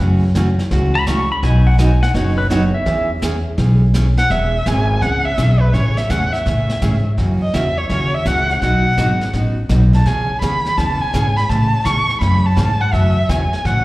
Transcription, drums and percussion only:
0.35 kick soft
0.35 snare medium
0.35 hi-hat pedal medium
0.59 snare soft
0.71 brush sweep medium
0.71 kick soft
0.71 snare medium
1.07 kick soft
1.07 snare medium
1.07 hi-hat pedal medium
1.43 brush sweep soft
1.43 kick soft
1.43 snare medium
1.79 kick soft
1.79 snare medium
1.79 hi-hat pedal medium
2.03 snare soft
2.14 brush sweep medium
2.14 kick soft
2.14 snare medium
2.50 kick soft
2.50 snare medium
2.50 hi-hat pedal medium
2.86 brush sweep soft
2.86 kick soft
2.86 snare soft
3.22 kick soft
3.22 snare medium
3.22 hi-hat pedal medium
3.58 brush sweep medium
3.58 kick soft
3.58 snare medium
3.94 kick soft
3.94 snare medium
3.94 hi-hat pedal medium
4.17 snare soft
4.30 brush sweep soft
4.30 kick soft
4.30 snare soft
4.66 kick soft
4.66 snare medium
4.66 hi-hat pedal medium
5.02 brush sweep medium
5.02 kick soft
5.02 snare medium
5.38 kick soft
5.38 snare medium
5.38 hi-hat pedal medium
5.74 brush sweep soft
5.74 kick soft
5.74 snare soft
5.97 snare soft
6.10 kick soft
6.10 snare medium
6.10 hi-hat pedal medium
6.34 snare soft
6.46 brush sweep medium
6.46 kick soft
6.46 snare soft
6.70 snare medium
6.82 kick soft
6.82 snare medium
6.82 hi-hat pedal medium
7.18 brush sweep soft
7.18 kick soft
7.18 snare soft
7.54 kick soft
7.54 snare medium
7.54 hi-hat pedal medium
7.90 brush sweep medium
7.90 kick soft
7.90 snare soft
8.26 kick soft
8.26 snare medium
8.26 hi-hat pedal medium
8.49 snare soft
8.62 brush sweep soft
8.62 kick soft
8.62 snare soft
8.98 kick soft
8.98 snare medium
8.98 hi-hat pedal medium
9.21 snare soft
9.33 brush sweep soft
9.33 kick soft
9.33 snare soft
9.69 kick soft
9.69 snare medium
9.69 hi-hat pedal medium
9.93 snare soft
10.06 brush sweep soft
10.06 kick soft
10.06 snare soft
10.42 kick soft
10.42 snare medium
10.42 hi-hat pedal soft
10.65 snare soft
10.78 brush sweep medium
10.78 kick soft
10.78 snare soft
11.14 kick soft
11.14 snare medium
11.14 hi-hat pedal medium
11.37 snare soft
11.49 brush sweep soft
11.49 kick soft
11.49 snare soft
11.85 kick soft
11.85 snare medium
11.85 hi-hat pedal soft
12.09 snare soft
12.21 brush sweep medium
12.21 kick soft
12.21 snare soft
12.57 kick soft
12.57 snare medium
12.57 hi-hat pedal medium
12.93 brush sweep soft
12.93 kick soft
12.93 snare soft
13.29 kick soft
13.29 snare medium
13.29 hi-hat pedal medium
13.53 snare soft
13.65 brush sweep medium
13.65 kick soft
13.65 snare soft

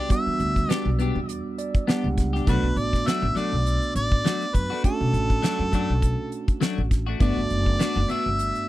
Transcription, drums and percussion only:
0.10 kick loud
0.10 closed hi-hat medium
0.40 closed hi-hat medium
0.56 kick medium
0.56 closed hi-hat soft
0.70 snare loud
0.70 closed hi-hat medium
0.99 closed hi-hat medium
1.29 closed hi-hat medium
1.58 closed hi-hat medium
1.75 kick medium
1.75 closed hi-hat soft
1.88 snare loud
1.88 closed hi-hat medium
2.18 kick medium
2.18 snare soft
2.18 closed hi-hat medium
2.35 snare soft
2.47 kick medium
2.47 closed hi-hat medium
2.77 closed hi-hat soft
2.93 kick medium
2.93 snare soft
3.07 snare loud
3.07 closed hi-hat medium
3.37 closed hi-hat medium
3.66 closed hi-hat medium
3.82 closed hi-hat soft
3.96 closed hi-hat medium
4.12 kick medium
4.25 snare loud
4.25 closed hi-hat medium
4.41 closed hi-hat soft
4.55 kick medium
4.55 closed hi-hat medium
4.84 kick medium
4.84 closed hi-hat medium
5.14 closed hi-hat medium
5.30 kick medium
5.30 closed hi-hat soft
5.43 snare medium
5.43 closed hi-hat medium
5.73 kick medium
5.73 closed hi-hat medium
6.02 kick medium
6.02 closed hi-hat medium
6.32 closed hi-hat medium
6.48 kick medium
6.48 closed hi-hat soft
6.61 snare loud
6.61 closed hi-hat medium
6.91 kick medium
6.91 snare soft
6.91 closed hi-hat medium
7.20 kick loud
7.20 closed hi-hat medium
7.50 closed hi-hat medium
7.66 kick medium
7.80 snare loud
7.80 closed hi-hat medium
8.09 closed hi-hat medium
8.39 closed hi-hat medium
8.55 closed hi-hat soft

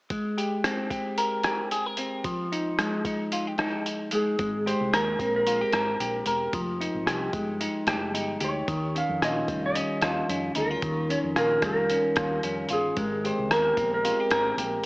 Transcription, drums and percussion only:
0.10 kick medium
0.10 closed hi-hat medium
0.38 closed hi-hat soft
0.64 cross-stick medium
0.64 closed hi-hat medium
0.90 kick medium
0.90 closed hi-hat medium
1.18 closed hi-hat medium
1.43 cross-stick medium
1.43 closed hi-hat soft
1.71 closed hi-hat medium
1.97 closed hi-hat medium
2.24 kick medium
2.24 closed hi-hat medium
2.53 closed hi-hat soft
2.79 cross-stick medium
2.79 closed hi-hat medium
3.05 kick medium
3.05 closed hi-hat medium
3.32 closed hi-hat medium
3.58 cross-stick medium
3.58 closed hi-hat soft
3.86 closed hi-hat medium
4.11 closed hi-hat medium
4.39 kick medium
4.39 closed hi-hat medium
4.67 closed hi-hat soft
4.93 cross-stick medium
4.93 closed hi-hat medium
5.19 kick medium
5.19 closed hi-hat medium
5.47 closed hi-hat medium
5.73 cross-stick medium
5.73 closed hi-hat soft
6.00 closed hi-hat medium
6.26 closed hi-hat medium
6.53 kick medium
6.53 closed hi-hat medium
6.82 closed hi-hat soft
7.07 cross-stick medium
7.07 closed hi-hat medium
7.33 kick medium
7.33 closed hi-hat medium
7.61 closed hi-hat medium
7.87 cross-stick medium
7.87 closed hi-hat soft
8.15 closed hi-hat medium
8.40 closed hi-hat medium
8.68 kick medium
8.68 closed hi-hat medium
8.96 closed hi-hat soft
9.22 cross-stick medium
9.22 closed hi-hat medium
9.48 kick medium
9.48 closed hi-hat medium
9.75 closed hi-hat medium
10.01 cross-stick medium
10.01 closed hi-hat soft
10.29 closed hi-hat medium
10.55 closed hi-hat medium
10.82 kick loud
10.82 closed hi-hat medium
11.10 closed hi-hat soft
11.36 cross-stick medium
11.36 closed hi-hat medium
11.62 kick medium
11.62 cross-stick medium
11.62 closed hi-hat medium
11.90 closed hi-hat medium
12.16 kick medium
12.16 cross-stick medium
12.16 closed hi-hat soft
12.43 closed hi-hat medium
12.69 closed hi-hat medium
12.96 kick medium
12.96 closed hi-hat medium
13.25 closed hi-hat soft
13.51 cross-stick medium
13.51 closed hi-hat medium
13.77 kick medium
13.77 closed hi-hat medium
14.05 closed hi-hat medium
14.30 cross-stick loud
14.30 closed hi-hat soft
14.58 closed hi-hat medium

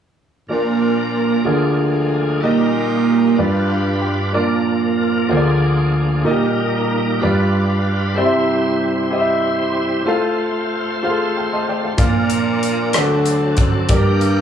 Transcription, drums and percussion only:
11.98 kick medium
11.98 closed hi-hat medium
12.30 closed hi-hat soft
12.63 closed hi-hat soft
12.93 cross-stick medium
12.93 closed hi-hat medium
13.26 closed hi-hat soft
13.57 kick medium
13.57 closed hi-hat soft
13.89 kick medium
13.89 closed hi-hat medium
14.21 closed hi-hat soft

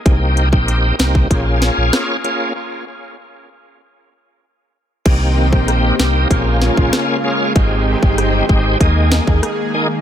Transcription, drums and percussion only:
0.06 kick loud
0.06 closed hi-hat medium
0.37 closed hi-hat medium
0.53 kick medium
0.68 closed hi-hat medium
0.99 snare loud
0.99 closed hi-hat soft
1.15 kick medium
1.31 kick loud
1.31 closed hi-hat medium
1.62 snare medium
1.62 closed hi-hat soft
1.93 cross-stick medium
1.93 snare loud
1.93 closed hi-hat medium
2.24 closed hi-hat soft
5.06 kick loud
5.06 closed hi-hat medium
5.06 crash loud
5.53 kick medium
5.68 cross-stick medium
5.68 closed hi-hat medium
6.00 snare loud
6.31 kick loud
6.31 closed hi-hat medium
6.62 snare medium
6.77 kick medium
6.93 cross-stick medium
6.93 snare loud
6.93 closed hi-hat medium
7.56 kick loud
7.56 closed hi-hat medium
8.03 kick medium
8.18 cross-stick medium
8.18 closed hi-hat medium
8.49 kick medium
8.81 kick loud
8.81 closed hi-hat medium
9.12 snare loud
9.27 kick medium
9.43 cross-stick medium
9.43 closed hi-hat medium

